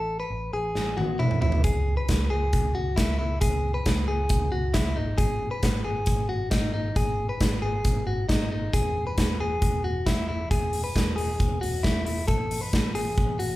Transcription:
Already playing: A1 A4
0.20 B4
0.30 A1
0.53 A1 G#4
0.75 A1, snare
0.97 A1 F#4, high tom
1.19 A1 E4, mid tom
1.31 mid tom
1.41 A1 E4, floor tom
1.52 floor tom
1.64 C#2 G#4, kick, closed hi-hat
1.97 B4
2.09 C#2, kick, snare, closed hi-hat
2.30 C#2 G#4
2.53 C#2, kick, closed hi-hat
2.75 C#2 F#4
2.96 C#2 E4, kick, snare, closed hi-hat
3.19 C#2 E4
3.41 C#2 G#4, kick, closed hi-hat
3.74 B4
3.86 C#2, kick, snare, closed hi-hat
4.08 C#2 G#4
4.29 C#2, kick, closed hi-hat
4.52 C#2 F#4
4.74 C#2 E4, kick, snare, closed hi-hat
4.96 G#1 D#4
5.18 G#4, kick, closed hi-hat
5.51 B4
5.63 G#1, kick, snare, closed hi-hat
5.85 G#1 G#4
6.06 G#1, kick, closed hi-hat
6.29 G#1 F#4
6.51 G#1 D#4, kick, snare, closed hi-hat
6.74 G#1 D#4
6.96 G#1 G#4, kick, closed hi-hat
7.29 B4
7.41 G#1, kick, snare, closed hi-hat
7.62 G#1 G#4
7.85 G#1, kick, closed hi-hat
8.06 G#1 F#4
8.29 G#1 D#4, kick, snare, closed hi-hat
8.52 G#1 D#4
8.73 E1 G#4, kick, closed hi-hat
9.07 B4
9.18 E1, kick, snare, closed hi-hat
9.40 E1 G#4
9.62 E1, kick, closed hi-hat
9.84 E1 F#4
10.06 E1 E4, kick, snare, closed hi-hat
10.29 E1 E4
10.51 E1 G#4, kick, closed hi-hat
10.73 open hi-hat
10.84 B4
10.96 E1, kick, snare, closed hi-hat
11.16 E1 G#4, open hi-hat
11.40 E1, kick, closed hi-hat
11.61 E1 F#4, open hi-hat
11.83 E1 E4, kick, snare, closed hi-hat
12.05 E1 E4, open hi-hat
12.28 A1 A4, kick, closed hi-hat
12.51 open hi-hat
12.61 B4
12.73 A1, kick, snare, closed hi-hat
12.95 A1 G#4, open hi-hat
13.18 A1, kick, closed hi-hat
13.39 A1 F#4, open hi-hat

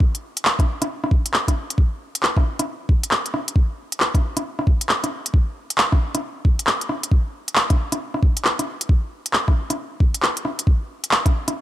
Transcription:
0.00 kick
0.15 closed hi-hat
0.37 closed hi-hat
0.45 clap
0.59 kick, cross-stick, closed hi-hat
0.82 cross-stick, closed hi-hat
1.04 cross-stick
1.11 kick
1.26 closed hi-hat
1.34 clap
1.48 kick, cross-stick, closed hi-hat
1.70 closed hi-hat
1.78 kick
2.15 closed hi-hat
2.23 clap
2.37 kick, cross-stick
2.59 cross-stick, closed hi-hat
2.89 kick
3.03 closed hi-hat
3.11 clap
3.26 closed hi-hat
3.34 cross-stick
3.48 closed hi-hat
3.56 kick
3.92 closed hi-hat
4.00 clap
4.15 kick, cross-stick, closed hi-hat
4.37 cross-stick, closed hi-hat
4.59 cross-stick
4.67 kick
4.81 closed hi-hat
4.89 clap
5.04 cross-stick, closed hi-hat
5.26 closed hi-hat
5.34 kick
5.70 closed hi-hat
5.78 clap
5.92 kick, cross-stick
6.15 cross-stick, closed hi-hat
6.45 kick
6.59 closed hi-hat
6.67 clap
6.81 closed hi-hat
6.89 cross-stick
7.03 closed hi-hat
7.12 kick
7.48 closed hi-hat
7.56 clap
7.70 kick, cross-stick, closed hi-hat
7.92 cross-stick, closed hi-hat
8.14 cross-stick
8.23 kick
8.37 closed hi-hat
8.45 clap
8.59 cross-stick, closed hi-hat
8.81 closed hi-hat
8.89 kick
9.26 closed hi-hat
9.33 clap
9.48 kick, cross-stick
9.70 cross-stick, closed hi-hat
10.00 kick
10.14 closed hi-hat
10.22 clap
10.37 closed hi-hat
10.45 cross-stick
10.59 closed hi-hat
10.67 kick
11.04 closed hi-hat
11.11 clap
11.26 kick, cross-stick, closed hi-hat
11.48 cross-stick, closed hi-hat

